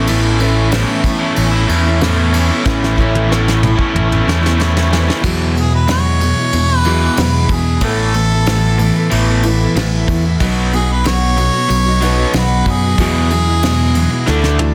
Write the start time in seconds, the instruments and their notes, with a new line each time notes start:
Already playing: fingered electric bass A1, grand piano C#4 E4 A4 B4, tonewheel organ C#4 E4 A4 B4
0.07 steel-string acoustic guitar A2 E3 B3 C#4 E4, overdriven electric guitar A3, ride
0.39 steel-string acoustic guitar E3 B3 C#4 E4, overdriven electric guitar A3, grand piano C#4 E4 A4 B4, ride
0.72 steel-string acoustic guitar A2 E3 B3 C#4 E4, overdriven electric guitar A3, snare, ride
1.04 steel-string acoustic guitar E3 B3 C#4 E4, muted overdriven electric guitar stroke, kick, ride
1.19 overdriven electric guitar A3 C#4 E4
1.36 fingered electric bass A1, ride
1.53 overdriven electric guitar A3, steel-string acoustic guitar B3 C#4 E4
1.68 fingered electric bass E2, steel-string acoustic guitar E3 B3 C#4, overdriven electric guitar A3, ride
1.73 steel-string acoustic guitar E4
1.86 overdriven electric guitar A3, steel-string acoustic guitar B3 C#4 E4
1.99 overdriven electric guitar A2 A3, snare, ride
2.03 steel-string acoustic guitar A2 E3 B3 C#4 E4
2.15 overdriven electric guitar A3 C#4 E4
2.32 steel-string acoustic guitar E3 B3, overdriven electric guitar A3, tonewheel organ C#4 E4 A4 B4, ride
2.37 steel-string acoustic guitar C#4 E4
2.50 overdriven electric guitar A3, steel-string acoustic guitar B3 C#4 E4
2.65 fingered electric bass A1, steel-string acoustic guitar A2 E3 B3 C#4 E4, overdriven electric guitar A3, grand piano C#4 E4 A4 B4, kick, snare
2.84 snare
2.97 steel-string acoustic guitar E3 C#4, overdriven electric guitar A3, grand piano C#4 E4 A4 C#5, kick
3.02 steel-string acoustic guitar E4
3.15 high tom
3.28 overdriven electric guitar A2 A3, snare
3.32 steel-string acoustic guitar A2 E3 B3 C#4 E4
3.48 snare
3.62 steel-string acoustic guitar E3 B3, muted overdriven electric guitar stroke, mid tom
3.67 steel-string acoustic guitar C#4 E4
3.76 overdriven electric guitar A3 C#4 E4, kick
3.95 fingered electric bass A1, mid tom
4.10 overdriven electric guitar A3 C#4, steel-string acoustic guitar E4, mid tom
4.14 steel-string acoustic guitar B3 C#4
4.25 fingered electric bass E2, steel-string acoustic guitar E3 B3, overdriven electric guitar A3, snare
4.30 steel-string acoustic guitar C#4 E4
4.43 overdriven electric guitar A3, steel-string acoustic guitar B3 C#4 E4, snare
4.58 steel-string acoustic guitar A2 E3 B3 C#4 E4, overdriven electric guitar A3, snare
4.73 overdriven electric guitar C#4 E4
4.77 overdriven electric guitar A3, snare
4.90 steel-string acoustic guitar E3 B3, overdriven electric guitar A3, tonewheel organ A3, snare
4.95 tonewheel organ B3 C4, steel-string acoustic guitar C#4 E4
5.01 tonewheel organ D4 E4
5.07 overdriven electric guitar A3, steel-string acoustic guitar B3 C#4 E4, tonewheel organ F4 G4, snare
5.13 tonewheel organ A4 B4
5.18 tonewheel organ C5 D5
5.24 fingered electric bass E2, steel-string acoustic guitar E2 B2 F#3 G#3 B3 E4, overdriven electric guitar E3, tonewheel organ E4 F#4 G#4 B4, grand piano E4 F#4 G#4, kick, crash
5.55 overdriven electric guitar E2 B2, steel-string acoustic guitar F#3 G#3 B3 E4, ride
5.60 harmonica G#4
5.70 steel-string acoustic guitar F#3 G#3 B3 E4
5.75 harmonica B4
5.88 steel-string acoustic guitar E2 B2 F#3 G#3 B3 E4, harmonica C#5, snare, ride
6.20 overdriven electric guitar E2 B2, steel-string acoustic guitar F#3 G#3 B3 E4, ride
6.38 steel-string acoustic guitar F#3 G#3 B3 E4
6.53 overdriven electric guitar E2 B2, fingered electric bass E2, ride
6.69 steel-string acoustic guitar F#3 G#3 B3 E4
6.78 harmonica B4
6.84 overdriven electric guitar E2 B2 E3, steel-string acoustic guitar F#3 G#3 B3 E4, grand piano E4 F#4 G#4, ride
7.01 steel-string acoustic guitar F#3 G#3 B3 E4
7.17 steel-string acoustic guitar E2 B2 F#3 G#3 B3 E4, fingered electric bass E2, harmonica B4, snare, ride
7.49 fingered electric bass E2, overdriven electric guitar E2 B2, kick, ride
7.55 harmonica G#4
7.81 fingered electric bass A1, steel-string acoustic guitar A2 E3 A3 B3 E4, tonewheel organ B3 E4 A4 B4, grand piano E4 A4 B4, kick, ride
7.86 harmonica A4
8.14 overdriven electric guitar A2, steel-string acoustic guitar E3 A3 B3 E4, ride
8.32 steel-string acoustic guitar A3 B3 E4
8.46 steel-string acoustic guitar A2 E3 A3 B3, snare, ride
8.50 steel-string acoustic guitar E4
8.78 overdriven electric guitar A2, steel-string acoustic guitar E3 A3 B3, ride
8.82 steel-string acoustic guitar E4
8.96 steel-string acoustic guitar A3 B3 E4
9.10 fingered electric bass A1, overdriven electric guitar A2 E3 A3, ride
9.27 steel-string acoustic guitar A3 B3 E4
9.43 overdriven electric guitar A2, steel-string acoustic guitar E3 A3 B3, grand piano E4 A4 B4, ride
9.47 steel-string acoustic guitar E4
9.61 steel-string acoustic guitar A3 B3 E4
9.75 fingered electric bass A1, steel-string acoustic guitar A2 E3 A3 B3 E4, snare, ride
10.08 fingered electric bass E2, overdriven electric guitar A2 E3, kick, ride
10.25 steel-string acoustic guitar A3 B3 E4
10.40 fingered electric bass B1, steel-string acoustic guitar B2 F#3 B3 D#4 F#4, tonewheel organ B3 D#4 F#4 B4, grand piano D#4 F#4 B4, kick, ride
10.71 overdriven electric guitar B2, steel-string acoustic guitar F#3 B3 D#4 F#4, harmonica G#4, ride
10.88 steel-string acoustic guitar B3 D#4 F#4, harmonica B4
11.04 steel-string acoustic guitar B2 F#3 B3 D#4 F#4, harmonica C#5, snare, ride
11.36 overdriven electric guitar B2, steel-string acoustic guitar F#3 B3 D#4 F#4, ride
11.53 steel-string acoustic guitar B3 D#4 F#4
11.68 fingered electric bass B1, overdriven electric guitar B2 F#3, ride
11.86 steel-string acoustic guitar B3 D#4 F#4
12.01 overdriven electric guitar B2, steel-string acoustic guitar F#3 B3 D#4 F#4, grand piano D#4 F#4 B4, ride
12.18 steel-string acoustic guitar B3 D#4 F#4
12.33 fingered electric bass B1, steel-string acoustic guitar B2 F#3 B3 D#4 F#4, snare, ride
12.37 harmonica B4
12.66 fingered electric bass F#2, overdriven electric guitar B2 F#3, kick, ride
12.70 harmonica G#4
12.83 steel-string acoustic guitar B3 D#4 F#4
12.98 fingered electric bass E2, steel-string acoustic guitar E2 B2 F#3 G#3 B3 E4, overdriven electric guitar E3, tonewheel organ B3 E4 F#4 G#4, grand piano E4 F#4 G#4, harmonica G#4, kick, ride
13.30 overdriven electric guitar E2 B2, steel-string acoustic guitar F#3 G#3 B3 E4, ride
13.47 steel-string acoustic guitar F#3 G#3 B3 E4
13.63 steel-string acoustic guitar E2 B2 F#3 G#3 B3 E4, snare, ride
13.94 overdriven electric guitar E2 B2, steel-string acoustic guitar F#3 G#3 B3 E4, ride
14.10 steel-string acoustic guitar F#3 G#3 B3 E4
14.26 fingered electric bass D2, steel-string acoustic guitar D3 A3 D4 E4, tonewheel organ A3 D4 E4 A4, grand piano D4 E4 A4, snare
14.42 steel-string acoustic guitar A3 D4 E4, snare
14.59 steel-string acoustic guitar D3 A3 D4 E4, grand piano D4 E4 A4 A5, high tom